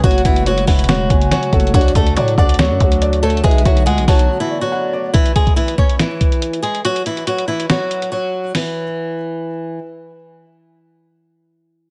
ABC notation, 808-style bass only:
X:1
M:4/4
L:1/16
Q:1/4=141
K:C#phr
V:1 name="808-style bass" clef=bass
F,,,2 F,,,4 E,,,4 F,,,2 z2 F,,,2 | D,,2 D,,2 A,,2 D,,3 F,, D,,6 | B,,,2 B,,,2 C,, B,,, B,,,2 z8 | z16 |
z16 | z16 | z16 |]